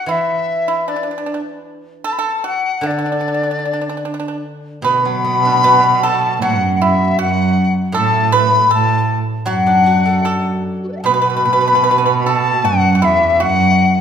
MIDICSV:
0, 0, Header, 1, 5, 480
1, 0, Start_track
1, 0, Tempo, 783290
1, 61, Time_signature, 2, 2, 24, 8
1, 1980, Tempo, 805369
1, 3420, Tempo, 766284
1, 5820, Tempo, 795756
1, 7260, Tempo, 772201
1, 8592, End_track
2, 0, Start_track
2, 0, Title_t, "Dizi"
2, 0, Program_c, 0, 73
2, 0, Note_on_c, 0, 78, 84
2, 67, Note_on_c, 0, 76, 78
2, 77, Note_off_c, 0, 78, 0
2, 543, Note_on_c, 0, 74, 61
2, 552, Note_off_c, 0, 76, 0
2, 901, Note_off_c, 0, 74, 0
2, 1262, Note_on_c, 0, 81, 86
2, 1302, Note_on_c, 0, 83, 67
2, 1311, Note_off_c, 0, 81, 0
2, 1348, Note_on_c, 0, 81, 87
2, 1357, Note_off_c, 0, 83, 0
2, 1499, Note_off_c, 0, 81, 0
2, 1512, Note_on_c, 0, 78, 82
2, 1756, Note_on_c, 0, 74, 83
2, 1765, Note_off_c, 0, 78, 0
2, 2714, Note_off_c, 0, 74, 0
2, 2943, Note_on_c, 0, 83, 105
2, 3670, Note_on_c, 0, 81, 90
2, 3679, Note_off_c, 0, 83, 0
2, 3907, Note_off_c, 0, 81, 0
2, 3910, Note_on_c, 0, 78, 88
2, 4094, Note_off_c, 0, 78, 0
2, 4111, Note_on_c, 0, 78, 63
2, 4155, Note_on_c, 0, 76, 77
2, 4164, Note_off_c, 0, 78, 0
2, 4391, Note_off_c, 0, 76, 0
2, 4401, Note_on_c, 0, 78, 94
2, 4728, Note_off_c, 0, 78, 0
2, 4873, Note_on_c, 0, 81, 99
2, 5107, Note_on_c, 0, 83, 99
2, 5116, Note_off_c, 0, 81, 0
2, 5341, Note_off_c, 0, 83, 0
2, 5359, Note_on_c, 0, 81, 100
2, 5642, Note_off_c, 0, 81, 0
2, 5833, Note_on_c, 0, 78, 87
2, 6514, Note_off_c, 0, 78, 0
2, 6634, Note_on_c, 0, 66, 44
2, 6658, Note_off_c, 0, 66, 0
2, 6669, Note_on_c, 0, 71, 45
2, 6687, Note_off_c, 0, 71, 0
2, 6691, Note_on_c, 0, 74, 51
2, 6712, Note_off_c, 0, 74, 0
2, 6716, Note_on_c, 0, 76, 54
2, 6726, Note_on_c, 0, 78, 59
2, 6728, Note_off_c, 0, 76, 0
2, 6745, Note_off_c, 0, 78, 0
2, 6748, Note_on_c, 0, 81, 62
2, 6785, Note_off_c, 0, 81, 0
2, 6789, Note_on_c, 0, 83, 95
2, 7440, Note_off_c, 0, 83, 0
2, 7460, Note_on_c, 0, 83, 63
2, 7524, Note_on_c, 0, 81, 97
2, 7533, Note_off_c, 0, 83, 0
2, 7748, Note_on_c, 0, 78, 94
2, 7757, Note_off_c, 0, 81, 0
2, 7993, Note_on_c, 0, 76, 88
2, 8002, Note_off_c, 0, 78, 0
2, 8230, Note_on_c, 0, 78, 101
2, 8239, Note_off_c, 0, 76, 0
2, 8582, Note_off_c, 0, 78, 0
2, 8592, End_track
3, 0, Start_track
3, 0, Title_t, "Pipa"
3, 0, Program_c, 1, 105
3, 53, Note_on_c, 1, 64, 61
3, 394, Note_off_c, 1, 64, 0
3, 417, Note_on_c, 1, 64, 61
3, 531, Note_off_c, 1, 64, 0
3, 539, Note_on_c, 1, 62, 47
3, 583, Note_off_c, 1, 62, 0
3, 589, Note_on_c, 1, 62, 38
3, 625, Note_off_c, 1, 62, 0
3, 632, Note_on_c, 1, 62, 42
3, 673, Note_off_c, 1, 62, 0
3, 680, Note_on_c, 1, 62, 35
3, 715, Note_off_c, 1, 62, 0
3, 722, Note_on_c, 1, 62, 43
3, 765, Note_off_c, 1, 62, 0
3, 774, Note_on_c, 1, 62, 39
3, 814, Note_off_c, 1, 62, 0
3, 822, Note_on_c, 1, 62, 43
3, 861, Note_off_c, 1, 62, 0
3, 1252, Note_on_c, 1, 69, 80
3, 1333, Note_off_c, 1, 69, 0
3, 1340, Note_on_c, 1, 69, 78
3, 1484, Note_off_c, 1, 69, 0
3, 1495, Note_on_c, 1, 66, 68
3, 1719, Note_off_c, 1, 66, 0
3, 1736, Note_on_c, 1, 62, 60
3, 1773, Note_off_c, 1, 62, 0
3, 1781, Note_on_c, 1, 62, 38
3, 1822, Note_off_c, 1, 62, 0
3, 1830, Note_on_c, 1, 62, 47
3, 1867, Note_off_c, 1, 62, 0
3, 1875, Note_on_c, 1, 62, 41
3, 1904, Note_off_c, 1, 62, 0
3, 1912, Note_on_c, 1, 62, 44
3, 1959, Note_off_c, 1, 62, 0
3, 1966, Note_on_c, 1, 62, 36
3, 2002, Note_off_c, 1, 62, 0
3, 2009, Note_on_c, 1, 62, 42
3, 2039, Note_off_c, 1, 62, 0
3, 2047, Note_on_c, 1, 62, 34
3, 2093, Note_off_c, 1, 62, 0
3, 2101, Note_on_c, 1, 62, 37
3, 2139, Note_off_c, 1, 62, 0
3, 2146, Note_on_c, 1, 62, 36
3, 2186, Note_off_c, 1, 62, 0
3, 2193, Note_on_c, 1, 62, 40
3, 2225, Note_off_c, 1, 62, 0
3, 2232, Note_on_c, 1, 62, 36
3, 2273, Note_off_c, 1, 62, 0
3, 2280, Note_on_c, 1, 62, 43
3, 2321, Note_off_c, 1, 62, 0
3, 2328, Note_on_c, 1, 62, 39
3, 2368, Note_off_c, 1, 62, 0
3, 2375, Note_on_c, 1, 62, 48
3, 2414, Note_off_c, 1, 62, 0
3, 2421, Note_on_c, 1, 62, 39
3, 2462, Note_off_c, 1, 62, 0
3, 2469, Note_on_c, 1, 62, 49
3, 2513, Note_off_c, 1, 62, 0
3, 2521, Note_on_c, 1, 62, 42
3, 2548, Note_off_c, 1, 62, 0
3, 2555, Note_on_c, 1, 62, 50
3, 2599, Note_off_c, 1, 62, 0
3, 2606, Note_on_c, 1, 62, 41
3, 2651, Note_off_c, 1, 62, 0
3, 2942, Note_on_c, 1, 71, 73
3, 3394, Note_off_c, 1, 71, 0
3, 3416, Note_on_c, 1, 71, 74
3, 3647, Note_off_c, 1, 71, 0
3, 3662, Note_on_c, 1, 69, 77
3, 3889, Note_off_c, 1, 69, 0
3, 3905, Note_on_c, 1, 66, 66
3, 4130, Note_off_c, 1, 66, 0
3, 4152, Note_on_c, 1, 64, 74
3, 4373, Note_off_c, 1, 64, 0
3, 4384, Note_on_c, 1, 66, 82
3, 4719, Note_off_c, 1, 66, 0
3, 4859, Note_on_c, 1, 69, 83
3, 5082, Note_off_c, 1, 69, 0
3, 5097, Note_on_c, 1, 71, 92
3, 5319, Note_off_c, 1, 71, 0
3, 5337, Note_on_c, 1, 69, 78
3, 5630, Note_off_c, 1, 69, 0
3, 5812, Note_on_c, 1, 66, 72
3, 6263, Note_off_c, 1, 66, 0
3, 6285, Note_on_c, 1, 69, 69
3, 6511, Note_off_c, 1, 69, 0
3, 6772, Note_on_c, 1, 71, 78
3, 6814, Note_off_c, 1, 71, 0
3, 6821, Note_on_c, 1, 71, 54
3, 6861, Note_off_c, 1, 71, 0
3, 6868, Note_on_c, 1, 71, 58
3, 6910, Note_off_c, 1, 71, 0
3, 6917, Note_on_c, 1, 71, 49
3, 6951, Note_off_c, 1, 71, 0
3, 6959, Note_on_c, 1, 71, 54
3, 7002, Note_off_c, 1, 71, 0
3, 7012, Note_on_c, 1, 71, 47
3, 7049, Note_off_c, 1, 71, 0
3, 7056, Note_on_c, 1, 71, 57
3, 7096, Note_off_c, 1, 71, 0
3, 7105, Note_on_c, 1, 71, 49
3, 7138, Note_off_c, 1, 71, 0
3, 7145, Note_on_c, 1, 71, 57
3, 7183, Note_off_c, 1, 71, 0
3, 7191, Note_on_c, 1, 71, 55
3, 7231, Note_off_c, 1, 71, 0
3, 7242, Note_on_c, 1, 71, 65
3, 7280, Note_off_c, 1, 71, 0
3, 7287, Note_on_c, 1, 71, 57
3, 7325, Note_off_c, 1, 71, 0
3, 7332, Note_on_c, 1, 71, 63
3, 7372, Note_off_c, 1, 71, 0
3, 7379, Note_on_c, 1, 71, 59
3, 7418, Note_off_c, 1, 71, 0
3, 7507, Note_on_c, 1, 69, 74
3, 7727, Note_off_c, 1, 69, 0
3, 7745, Note_on_c, 1, 66, 71
3, 7926, Note_off_c, 1, 66, 0
3, 7934, Note_on_c, 1, 66, 57
3, 7975, Note_off_c, 1, 66, 0
3, 7977, Note_on_c, 1, 64, 81
3, 8201, Note_off_c, 1, 64, 0
3, 8214, Note_on_c, 1, 66, 78
3, 8549, Note_off_c, 1, 66, 0
3, 8592, End_track
4, 0, Start_track
4, 0, Title_t, "Guzheng"
4, 0, Program_c, 2, 107
4, 39, Note_on_c, 2, 52, 53
4, 1486, Note_off_c, 2, 52, 0
4, 1723, Note_on_c, 2, 50, 60
4, 2928, Note_on_c, 2, 47, 53
4, 3065, Note_on_c, 2, 54, 39
4, 3175, Note_off_c, 2, 50, 0
4, 3181, Note_on_c, 2, 59, 43
4, 3302, Note_on_c, 2, 62, 41
4, 3417, Note_on_c, 2, 66, 47
4, 3895, Note_off_c, 2, 54, 0
4, 3902, Note_on_c, 2, 54, 59
4, 4148, Note_off_c, 2, 59, 0
4, 4270, Note_off_c, 2, 62, 0
4, 4380, Note_off_c, 2, 47, 0
4, 4387, Note_off_c, 2, 66, 0
4, 4846, Note_on_c, 2, 45, 61
4, 5335, Note_off_c, 2, 54, 0
4, 5806, Note_on_c, 2, 54, 69
4, 5933, Note_on_c, 2, 62, 43
4, 6051, Note_on_c, 2, 66, 45
4, 6168, Note_on_c, 2, 69, 45
4, 6280, Note_off_c, 2, 45, 0
4, 6287, Note_on_c, 2, 74, 46
4, 6760, Note_on_c, 2, 47, 58
4, 6895, Note_off_c, 2, 62, 0
4, 7017, Note_off_c, 2, 66, 0
4, 7136, Note_off_c, 2, 69, 0
4, 7251, Note_off_c, 2, 54, 0
4, 7256, Note_off_c, 2, 74, 0
4, 8212, Note_off_c, 2, 47, 0
4, 8592, End_track
5, 0, Start_track
5, 0, Title_t, "Cello"
5, 0, Program_c, 3, 42
5, 2936, Note_on_c, 3, 47, 82
5, 3903, Note_on_c, 3, 42, 77
5, 3913, Note_off_c, 3, 47, 0
5, 4376, Note_off_c, 3, 42, 0
5, 4379, Note_on_c, 3, 42, 78
5, 4716, Note_off_c, 3, 42, 0
5, 4868, Note_on_c, 3, 45, 89
5, 5315, Note_off_c, 3, 45, 0
5, 5346, Note_on_c, 3, 45, 84
5, 5634, Note_off_c, 3, 45, 0
5, 5822, Note_on_c, 3, 42, 68
5, 6508, Note_off_c, 3, 42, 0
5, 6775, Note_on_c, 3, 47, 86
5, 7749, Note_on_c, 3, 42, 84
5, 7758, Note_off_c, 3, 47, 0
5, 7978, Note_on_c, 3, 40, 76
5, 7987, Note_off_c, 3, 42, 0
5, 8226, Note_on_c, 3, 42, 85
5, 8235, Note_off_c, 3, 40, 0
5, 8580, Note_off_c, 3, 42, 0
5, 8592, End_track
0, 0, End_of_file